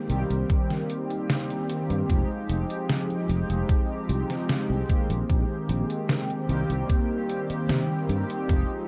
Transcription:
Already playing: analog polysynth D#3 G#3 A#3 C4 G4
0.08 fretless electric bass C2, analog polysynth D#3 G3 A#3 C4 G4, closed hi-hat
0.30 fretless electric bass C2, closed hi-hat
0.49 kick, closed hi-hat
0.70 snare, closed hi-hat
0.89 closed hi-hat
1.10 closed hi-hat
1.29 snare, closed hi-hat
1.50 closed hi-hat
1.69 closed hi-hat
1.90 fretless electric bass G2, closed hi-hat
2.08 fretless electric bass F1, analog polysynth F3 G#3 C4 D#4 G4, kick, closed hi-hat
2.49 fretless electric bass F1, closed hi-hat
2.70 closed hi-hat
2.89 snare, closed hi-hat
3.10 closed hi-hat
3.29 fretless electric bass F1, closed hi-hat
3.50 fretless electric bass F1, closed hi-hat
3.69 kick, closed hi-hat
4.09 fretless electric bass C2, closed hi-hat
4.30 snare, closed hi-hat
4.49 snare, closed hi-hat
4.70 fretless electric bass C2
4.88 analog polysynth D#3 G#3 A#3 C4 G4, kick, closed hi-hat
5.10 fretless electric bass A#1, closed hi-hat
5.29 fretless electric bass A#1, kick, closed hi-hat
5.69 fretless electric bass A#1, closed hi-hat
5.90 closed hi-hat
6.09 snare, closed hi-hat
6.30 closed hi-hat
6.48 fretless electric bass C2, analog polysynth D#3 G3 A#3 C4 G4, closed hi-hat
6.70 fretless electric bass C2, closed hi-hat
6.89 kick, closed hi-hat
7.29 closed hi-hat
7.50 muted fretless electric bass stroke, closed hi-hat
7.69 fretless electric bass C3, snare, closed hi-hat
8.09 fretless electric bass G2, closed hi-hat
8.30 closed hi-hat
8.48 fretless electric bass F1, analog polysynth F3 G#3 C4 D#4 G4, kick, closed hi-hat

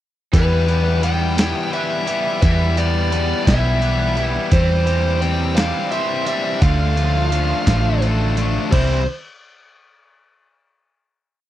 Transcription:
0.33 fingered electric bass E2, distorted electric guitar E3 G3 B3 G4, lead electric guitar B4, kick, closed hi-hat
0.68 distorted electric guitar E3 G3 B3 G4, closed hi-hat
1.02 distorted electric guitar E3 G3 B3 G4, lead electric guitar G5, closed hi-hat
1.37 distorted electric guitar E3 G3 B3 G4, overdriven electric guitar E4, snare, closed hi-hat
1.72 distorted electric guitar E3 G3 B3 G4, overdriven electric guitar B4, lead electric guitar E5, closed hi-hat
2.07 distorted electric guitar E3 G3 B3 G4, overdriven electric guitar E4, closed hi-hat
2.42 fingered electric bass E2, distorted electric guitar E3 G3 B3 G4, lead electric guitar E5, kick, closed hi-hat
2.77 distorted electric guitar E3 G3 B3 G4, lead electric guitar D5, closed hi-hat
3.12 distorted electric guitar E3 G3 B3 G4, closed hi-hat
3.46 fingered electric bass B1, distorted electric guitar E3 G3 B3 G4, overdriven electric guitar E4, lead electric guitar E5, kick, snare, closed hi-hat
3.82 distorted electric guitar E3 G3 B3 G4, overdriven electric guitar B4, closed hi-hat
4.17 distorted electric guitar E3 G3 B3 G4, overdriven electric guitar E4, closed hi-hat
4.52 fingered electric bass E2, distorted electric guitar E3 G3 C4 G4, lead electric guitar C5, kick, closed hi-hat
4.87 distorted electric guitar E3 G3 C4 G4, closed hi-hat
5.22 distorted electric guitar E3 G3 C4 G4, lead electric guitar G5, closed hi-hat
5.56 distorted electric guitar E3 G3 C4 G4, overdriven electric guitar D4, lead electric guitar F5, snare, closed hi-hat
5.91 distorted electric guitar E3 G3 C4 G4, overdriven electric guitar C5, lead electric guitar E5, closed hi-hat
6.26 distorted electric guitar E3 G3 C4 G4, overdriven electric guitar D4, lead electric guitar E5, closed hi-hat
6.44 lead electric guitar E5
6.61 fingered electric bass D2, distorted electric guitar D3 A3 D4 F4, lead electric guitar F5, kick, closed hi-hat
6.96 distorted electric guitar D3 A3 D4 F4, overdriven electric guitar F3, closed hi-hat
7.32 distorted electric guitar D3 A3 D4 F4, overdriven electric guitar F3, closed hi-hat
7.66 fingered electric bass A1, distorted electric guitar D3 A3 D4 F4, kick, snare, closed hi-hat
8.02 distorted electric guitar D3 A3 D4 F4, overdriven electric guitar A4, closed hi-hat
8.37 distorted electric guitar D3 A3 D4 F4, closed hi-hat
8.72 fingered electric bass C2, distorted electric guitar C3 E3 G3 C4 E4, lead electric guitar C5, kick, crash

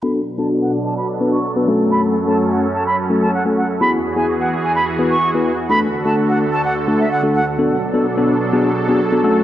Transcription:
0.03 supersaw synth B2 F#3 D4 A4, tine electric piano B3 D4 F#4 A4, flute B5
0.38 tine electric piano B3 D4 F#4 A4, flute A5
0.62 flute F#5
0.86 flute A5
0.97 flute B5
1.21 tine electric piano B3 D4 F#4 B4
1.33 flute C#6
1.56 tine electric piano B3 D4 F#4 B4
1.68 supersaw synth F#2 C#4, tine electric piano A3 C#4 F#4 A4
1.92 flute B5
2.27 tine electric piano A3 C#4 F#4 A4, flute A5
2.51 flute F#5
2.74 flute A5
2.86 flute B5
3.10 tine electric piano A3 C#4 F#4 A4
3.22 flute A5
3.34 flute F#5
3.45 tine electric piano A3 C#4 F#4 A4
3.57 flute F#5
3.81 supersaw synth E2 E3 F#4 G#4, tine electric piano B3 E4 F#4 G#4, flute B5
4.16 tine electric piano B3 E4 F#4 G#4, flute G#5
4.40 flute F#5
4.63 flute G#5
4.75 flute B5
4.99 tine electric piano B3 E4 F#4 B4
5.11 flute C#6
5.34 tine electric piano B3 E4 F#4 B4
5.69 supersaw synth D2 D3 A4, tine electric piano A3 D4 F#4 A4, flute B5
6.05 tine electric piano A3 D4 F#4 A4, flute A5
6.29 flute F#5
6.53 flute A5
6.64 flute F#5
6.88 tine electric piano A3 D4 F#4 A4
7.00 flute E5
7.12 flute F#5
7.23 tine electric piano A3 D4 F#4 A4
7.35 flute F#5
7.59 supersaw synth B2 F#3 D4 A4, tine electric piano B3 D4 F#4 A4
7.94 tine electric piano B3 D4 F#4 A4
8.17 tine electric piano B3 D4 F#4 A4
8.53 tine electric piano B3 D4 F#4 G#4
8.89 tine electric piano B3 D4 F#4 G#4
9.12 tine electric piano B3 D4 F#4 A4
9.24 supersaw synth F#2 C#4, tine electric piano A3 C#4 F#4 A4

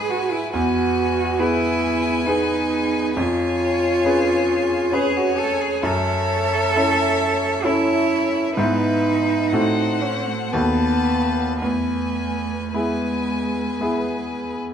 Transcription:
Already playing: grand piano G#3 G#4 B4, cello G#4, violin B4 G#5
0.10 cello F#4
0.32 cello E4
0.51 grand piano E2, cello F#4, violin B4 G#5
1.39 grand piano B3 G#4 B4, cello E4, violin B4 G#5
2.26 grand piano B3 G#4 B4, cello D#4
3.15 grand piano F2, cello F4, violin C#5 G#5
4.05 grand piano C#4 G#4 B4
4.92 grand piano C#4 G#4 B4, cello G#4, violin C#5 G#5
5.16 cello F#4
5.38 cello A4
5.61 cello G#4
5.82 grand piano F#2, cello A4, violin C#5 E5
6.76 grand piano C#4 E4 A4
7.64 grand piano C#4 E4 A4, cello E4, violin C#5 E5
8.55 grand piano G#2 B3 E4 B4, cello D#4, violin B4 E5
9.52 grand piano A2 C4 F#4 A4, violin C5 F#5
10.02 cello C#4
10.27 cello A3
10.51 grand piano D#2 B3 F#4, cello B3, violin B4 A5
10.55 grand piano A4
11.60 grand piano E2, cello A3, violin B4 G#5
12.73 cello G#3, grand piano B3 E4 G#4, violin B4 G#5
13.81 grand piano B3 E4 G#4

